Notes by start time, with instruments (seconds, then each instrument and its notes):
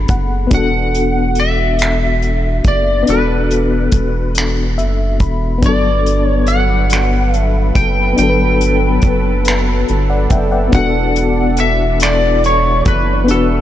Already playing: fm electric piano B3 D4 F#4 G#4 A4 B5
0.08 analog synth bass F#1, fm electric piano F#5, kick, closed hi-hat
0.47 fm electric piano B3 D4, closed hi-hat
0.51 analog synth bass E1, fm electric piano F#4, lead electric guitar F#5, kick
0.57 fm electric piano A4
0.95 closed hi-hat
1.35 closed hi-hat
1.40 lead electric guitar E5
1.79 finger snap, closed hi-hat
2.22 closed hi-hat
2.64 analog synth bass F#1, lead electric guitar D5, kick, closed hi-hat
3.03 fm electric piano B3 D4
3.07 analog synth bass E1, fm electric piano F#4, lead electric guitar B4, closed hi-hat
3.13 fm electric piano A4
3.51 closed hi-hat
3.92 analog synth bass E1, kick, closed hi-hat
4.35 finger snap, closed hi-hat
4.78 analog synth bass F#1, fm electric piano E5, closed hi-hat
5.20 analog synth bass E1, fm electric piano B5, kick, closed hi-hat
5.58 analog synth pad F#3 A4 B4, fm electric piano B3 D4
5.63 analog synth bass G1, fm electric piano F#3, lead electric guitar D5, kick, closed hi-hat
5.68 fm electric piano A4
6.06 closed hi-hat
6.25 lead electric guitar C#5
6.47 lead electric guitar F#5, closed hi-hat
6.90 finger snap, closed hi-hat
7.34 lead electric guitar E5, closed hi-hat
7.75 analog synth bass F#1, lead electric guitar G5, kick, closed hi-hat
8.13 fm electric piano B3 D4
8.18 analog synth bass G1, fm electric piano F#3, lead electric guitar G5, closed hi-hat
8.23 fm electric piano A4
8.30 fm electric piano B4
8.61 closed hi-hat
9.02 analog synth bass F#1, kick, closed hi-hat
9.45 finger snap, closed hi-hat
9.88 analog synth bass G1, closed hi-hat
10.10 fm electric piano D5 F#5
10.30 analog synth bass F#1, fm electric piano E5 G5, kick, closed hi-hat
10.52 fm electric piano D5 F#5
10.68 fm electric piano B3 D4
10.72 analog synth bass E1, analog synth pad E3 D4, fm electric piano F#4, lead electric guitar F#5, kick, closed hi-hat
10.78 fm electric piano A4
11.16 closed hi-hat
11.57 lead electric guitar E5, closed hi-hat
12.00 lead electric guitar D5, finger snap, closed hi-hat
12.44 lead electric guitar C#5, closed hi-hat
12.85 analog synth bass F#1, lead electric guitar B4, kick, closed hi-hat
13.25 fm electric piano B3 D4, analog synth pad E4, closed hi-hat
13.30 analog synth bass E1, fm electric piano F#4, lead electric guitar A4
13.34 fm electric piano B4